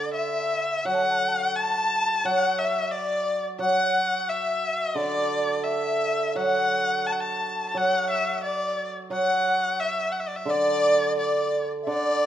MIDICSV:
0, 0, Header, 1, 4, 480
1, 0, Start_track
1, 0, Tempo, 711744
1, 582, Time_signature, 2, 2, 24, 8
1, 1060, Tempo, 679502
1, 3460, Tempo, 696864
1, 5380, Tempo, 678733
1, 7300, Tempo, 704225
1, 8520, End_track
2, 0, Start_track
2, 0, Title_t, "Dizi"
2, 0, Program_c, 0, 73
2, 100, Note_on_c, 0, 76, 63
2, 555, Note_off_c, 0, 76, 0
2, 590, Note_on_c, 0, 78, 67
2, 639, Note_on_c, 0, 81, 61
2, 649, Note_off_c, 0, 78, 0
2, 693, Note_on_c, 0, 78, 64
2, 703, Note_off_c, 0, 81, 0
2, 745, Note_on_c, 0, 81, 61
2, 755, Note_off_c, 0, 78, 0
2, 800, Note_on_c, 0, 78, 62
2, 810, Note_off_c, 0, 81, 0
2, 865, Note_on_c, 0, 81, 63
2, 875, Note_off_c, 0, 78, 0
2, 913, Note_on_c, 0, 78, 76
2, 924, Note_off_c, 0, 81, 0
2, 1075, Note_on_c, 0, 81, 79
2, 1086, Note_off_c, 0, 78, 0
2, 1434, Note_off_c, 0, 81, 0
2, 1441, Note_on_c, 0, 81, 79
2, 1563, Note_on_c, 0, 78, 88
2, 1574, Note_off_c, 0, 81, 0
2, 1793, Note_off_c, 0, 78, 0
2, 1804, Note_on_c, 0, 76, 70
2, 1987, Note_off_c, 0, 76, 0
2, 1987, Note_on_c, 0, 76, 53
2, 2035, Note_on_c, 0, 74, 68
2, 2046, Note_off_c, 0, 76, 0
2, 2386, Note_off_c, 0, 74, 0
2, 2508, Note_on_c, 0, 78, 85
2, 2838, Note_off_c, 0, 78, 0
2, 2860, Note_on_c, 0, 78, 68
2, 2981, Note_on_c, 0, 76, 70
2, 2992, Note_off_c, 0, 78, 0
2, 3333, Note_off_c, 0, 76, 0
2, 3337, Note_on_c, 0, 76, 67
2, 3459, Note_on_c, 0, 74, 75
2, 3470, Note_off_c, 0, 76, 0
2, 3753, Note_off_c, 0, 74, 0
2, 3933, Note_on_c, 0, 76, 64
2, 4422, Note_on_c, 0, 78, 74
2, 4432, Note_off_c, 0, 76, 0
2, 4904, Note_on_c, 0, 81, 73
2, 4914, Note_off_c, 0, 78, 0
2, 4988, Note_off_c, 0, 81, 0
2, 4992, Note_on_c, 0, 81, 72
2, 5332, Note_off_c, 0, 81, 0
2, 5332, Note_on_c, 0, 81, 53
2, 5380, Note_on_c, 0, 78, 79
2, 5390, Note_off_c, 0, 81, 0
2, 5861, Note_on_c, 0, 74, 66
2, 5872, Note_off_c, 0, 78, 0
2, 6223, Note_off_c, 0, 74, 0
2, 6352, Note_on_c, 0, 78, 78
2, 6621, Note_off_c, 0, 78, 0
2, 6831, Note_on_c, 0, 76, 57
2, 7043, Note_off_c, 0, 76, 0
2, 7305, Note_on_c, 0, 74, 93
2, 7750, Note_off_c, 0, 74, 0
2, 7778, Note_on_c, 0, 74, 72
2, 8115, Note_off_c, 0, 74, 0
2, 8224, Note_on_c, 0, 76, 43
2, 8262, Note_on_c, 0, 74, 73
2, 8272, Note_off_c, 0, 76, 0
2, 8520, Note_off_c, 0, 74, 0
2, 8520, End_track
3, 0, Start_track
3, 0, Title_t, "Erhu"
3, 0, Program_c, 1, 110
3, 0, Note_on_c, 1, 74, 78
3, 90, Note_off_c, 1, 74, 0
3, 94, Note_on_c, 1, 76, 78
3, 579, Note_on_c, 1, 78, 92
3, 589, Note_off_c, 1, 76, 0
3, 1056, Note_on_c, 1, 81, 91
3, 1066, Note_off_c, 1, 78, 0
3, 1539, Note_on_c, 1, 78, 92
3, 1549, Note_off_c, 1, 81, 0
3, 1776, Note_on_c, 1, 76, 82
3, 1786, Note_off_c, 1, 78, 0
3, 2009, Note_on_c, 1, 74, 83
3, 2019, Note_off_c, 1, 76, 0
3, 2372, Note_off_c, 1, 74, 0
3, 2494, Note_on_c, 1, 78, 98
3, 2981, Note_on_c, 1, 76, 84
3, 2991, Note_off_c, 1, 78, 0
3, 3455, Note_on_c, 1, 74, 84
3, 3465, Note_off_c, 1, 76, 0
3, 3921, Note_on_c, 1, 76, 81
3, 3931, Note_off_c, 1, 74, 0
3, 4418, Note_on_c, 1, 78, 87
3, 4428, Note_off_c, 1, 76, 0
3, 4905, Note_on_c, 1, 81, 79
3, 4915, Note_off_c, 1, 78, 0
3, 4944, Note_on_c, 1, 78, 71
3, 4954, Note_off_c, 1, 81, 0
3, 5000, Note_on_c, 1, 81, 79
3, 5010, Note_off_c, 1, 78, 0
3, 5329, Note_off_c, 1, 81, 0
3, 5333, Note_on_c, 1, 81, 62
3, 5390, Note_on_c, 1, 78, 85
3, 5401, Note_off_c, 1, 81, 0
3, 5620, Note_off_c, 1, 78, 0
3, 5624, Note_on_c, 1, 76, 76
3, 5848, Note_off_c, 1, 76, 0
3, 5862, Note_on_c, 1, 74, 74
3, 6198, Note_off_c, 1, 74, 0
3, 6350, Note_on_c, 1, 78, 88
3, 6827, Note_on_c, 1, 76, 84
3, 6837, Note_off_c, 1, 78, 0
3, 7050, Note_on_c, 1, 78, 65
3, 7061, Note_off_c, 1, 76, 0
3, 7107, Note_on_c, 1, 76, 68
3, 7117, Note_off_c, 1, 78, 0
3, 7166, Note_on_c, 1, 74, 66
3, 7177, Note_off_c, 1, 76, 0
3, 7224, Note_on_c, 1, 76, 71
3, 7235, Note_off_c, 1, 74, 0
3, 7320, Note_on_c, 1, 74, 84
3, 7330, Note_off_c, 1, 76, 0
3, 7785, Note_off_c, 1, 74, 0
3, 7790, Note_on_c, 1, 74, 61
3, 8121, Note_off_c, 1, 74, 0
3, 8266, Note_on_c, 1, 74, 82
3, 8520, Note_off_c, 1, 74, 0
3, 8520, End_track
4, 0, Start_track
4, 0, Title_t, "Hammered dulcimer"
4, 0, Program_c, 2, 15
4, 0, Note_on_c, 2, 50, 52
4, 574, Note_on_c, 2, 54, 54
4, 1056, Note_off_c, 2, 50, 0
4, 1528, Note_off_c, 2, 54, 0
4, 1537, Note_on_c, 2, 54, 55
4, 2477, Note_off_c, 2, 54, 0
4, 2485, Note_on_c, 2, 54, 61
4, 3447, Note_on_c, 2, 50, 54
4, 3931, Note_off_c, 2, 54, 0
4, 4414, Note_on_c, 2, 54, 53
4, 4898, Note_off_c, 2, 50, 0
4, 5363, Note_off_c, 2, 54, 0
4, 5372, Note_on_c, 2, 54, 58
4, 6323, Note_off_c, 2, 54, 0
4, 6331, Note_on_c, 2, 54, 60
4, 7289, Note_on_c, 2, 50, 60
4, 7770, Note_off_c, 2, 54, 0
4, 8244, Note_off_c, 2, 50, 0
4, 8253, Note_on_c, 2, 50, 59
4, 8520, Note_off_c, 2, 50, 0
4, 8520, End_track
0, 0, End_of_file